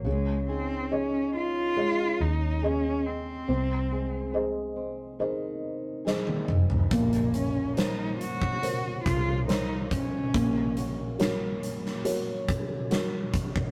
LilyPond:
<<
  \new Staff \with { instrumentName = "Felt piano" } { \time 4/4 \key des \major \tempo 4 = 70 des4 <aes' des'' ees''>4 <aes' des'' ees''>4 <aes' ees''>4 | c'4 <aes' c'' ees''>4 <aes' c'' ees''>4 <aes' c'' ees''>4 | bes4 <bes' c'' des''>4 <bes' c'' des''>4 <bes' c'' des''>4 | bes4 <ges' bes' des''>4 <ges' bes' des''>4 <ges' bes' des''>4 | }
  \new Staff \with { instrumentName = "Cello" } { \time 4/4 \key des \major aes8 c'8 des'8 f'4 ees'8 des'8 c'8~ | c'4 r2. | bes8 des'8 ees'8 ges'4 f'8 ees'8 des'8~ | des'4 r2. | }
  \new Staff \with { instrumentName = "Nylon-string guitar" } { \time 4/4 \key des \major des8 <ees' aes'>4 ees'8 aes4 aes'4 | c8 <aes c' aes'>4 c'8 ees4 aes'4 | bes,8 des'2~ des'8 f'4 | bes,8 <bes des' ges'>4 des'8 ges4 ges'4 | }
  \new Staff \with { instrumentName = "Fingered electric bass" } { \clef bass \time 4/4 \key des \major des,2~ des,16 r16 ees,4. | c,2~ c,8 ees,4 f,,8 | bes,,2~ bes,,16 r16 c,4. | bes,,2~ bes,,8 des,4 aes,,8 | }
  \new DrumStaff \with { instrumentName = "Drums" } \drummode { \time 4/4 r4 r4 r4 r4 | r4 r4 r4 sn16 tommh16 toml16 tomfh16 | <hh bd>16 hh16 hh8 <hh sn>8 hh16 bd16 hh8 <hh bd>8 <hh sn>8 <hh bd>8 | <hh bd>8 hh8 <hh sn>8 hh16 sn16 hh8 <hh bd>8 <hh sn>8 <hh bd>16 bd16 | }
>>